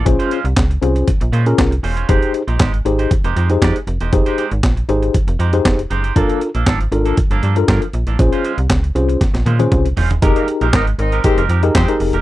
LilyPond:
<<
  \new Staff \with { instrumentName = "Tine electric piano" } { \time 4/4 \key bes \mixolydian \tempo 4 = 118 <des' f' aes' c''>8 r4 <des' f' aes' c''>8 r8. <des' f' aes' bes'>8 r8. | <ees' g' aes' c''>8 r4 <ees' g' aes' c''>8 r8. <ees' g' aes' c''>8 r8. | <ees' g' aes' c''>8 r4 <ees' g' aes' c''>8 r8. <ees' g' aes' c''>8 r8. | <d' f' a' bes'>8 r4 <d' f' a' bes'>8 r8. <d' f' a' bes'>8 r8. |
<des' f' aes' c''>8 r4 <des' f' aes' c''>8 r8. <des' f' aes' c''>8 r8. | \key f \minor <ees' g' aes' bes'>8. r4 r16 <ees' g' aes' bes'>16 r8 <ees' g' aes' bes'>16 r16 <ees' g' aes' bes'>8 r16 | }
  \new Staff \with { instrumentName = "Clean electric guitar" } { \time 4/4 \key bes \mixolydian r16 <aes des' f' c''>16 <aes des' f' c''>16 r4. r16 <aes des' f' c''>16 r8. <aes des' f' c''>16 <aes des' f' c''>16 | <aes ees' g' c''>8 r16 <aes ees' g' c''>16 <aes ees' g' c''>16 r8 <aes ees' g' c''>16 r16 <aes ees' g' c''>16 <aes ees' g' c''>16 r16 <aes ees' g' d''>16 r8 <aes ees' g' c''>16 | r16 <aes ees' g' c''>16 <aes ees' g' c''>16 r4. r16 <aes ees' g' c''>16 r8. <aes ees' g' c''>16 <aes ees' g' c''>16 | <f bes d' a'>8 r16 <f bes d' a'>16 <f bes d' a'>16 r8 <f bes d' a'>16 r16 <f bes d' a'>16 <f bes d' a'>16 r16 <f bes d' bes'>16 r8 <f bes d' a'>16 |
r16 <aes des' f' c''>16 <aes des' f' c''>16 r4. r16 <aes des' f' c''>16 r8. <aes des' f' c''>16 r16 | \key f \minor <aes ees' g' bes'>8 r16 <aes ees' g' bes'>16 <aes ees' g' bes'>16 r8 <aes ees' g' bes'>16 r16 <aes ees' g' bes'>16 <aes ees' g' bes'>16 r16 <aes ees' g' c''>16 r8 <aes ees' g' bes'>16 | }
  \new Staff \with { instrumentName = "Horn section" } { \time 4/4 \key bes \mixolydian r1 | r1 | r1 | r1 |
r1 | \key f \minor r16 <g bes ees' bes'>16 r16 <aes c' g' c''>16 <c' ees' bes' ees''>16 r16 <c' ees' bes' ees''>8 <aes c' g' c''>8 r8 <aes c' g' c''>8 r8 | }
  \new Staff \with { instrumentName = "FM bass" } { \clef bass \time 4/4 \key bes \mixolydian bes,,16 r8 c,16 des,8 c,8 r16 bes,,16 bes,8 c,8 e,,8 | f,,16 r8 bes,,16 aes,,8 aes,,8 r16 f,,16 f,8 f,16 r16 f,,16 e,,16 | f,,16 r8 aes,,16 bes,,8 aes,,8 r16 f,,16 f,8 f,,8 ges,,8 | g,,16 r8 bes,,16 aes,,8 aes,,8 r16 g,,16 g,8 g,16 r16 bes,,16 a,,16 |
bes,,16 r8 c,16 des,8 c,8 r16 bes,,16 bes,8 c,8 e,,8 | \key f \minor f,,16 r8 bes,,16 aes,,8 aes,,8 r16 f,,16 f,8 f,16 r16 f,,16 e,,16 | }
  \new DrumStaff \with { instrumentName = "Drums" } \drummode { \time 4/4 <hh bd>16 hh16 hh16 hh16 <hc hh bd sn>16 hh16 hh16 hh16 <hh bd>16 hh16 hh16 hh16 <hc hh bd sn>16 hh16 hho16 hh16 | <hh bd>16 hh16 hh16 hh16 <hc hh bd sn>16 hh16 hh16 hh16 <hh bd>16 hh16 hh16 hh16 <hc hh bd sn>16 hh16 hh16 hh16 | <hh bd>16 hh16 hh16 hh16 <hc hh bd sn>16 hh16 hh16 hh16 <hh bd>16 hh16 hh16 hh16 <hc hh bd sn>16 hh16 hh16 hh16 | <hh bd>16 hh16 hh16 hh16 <hc hh bd sn>16 hh16 hh16 hh16 <hh bd>16 hh16 hh16 hh16 <hc hh bd sn>16 hh16 hh16 hh16 |
<hh bd>16 hh16 hh16 hh16 <hc hh bd sn>16 hh16 hh16 hh16 <hh bd sn>16 <hh sn>16 <hh tommh>16 <hh tommh>16 <hh bd toml>16 hh16 <hho tomfh>16 <hh tomfh>16 | <hh bd>16 hh16 hh16 hh16 <hc hh bd sn>16 hh16 hh16 hh16 <hh bd>16 hh16 hh16 hh16 <hc hh bd sn>16 hh16 hho16 hh16 | }
>>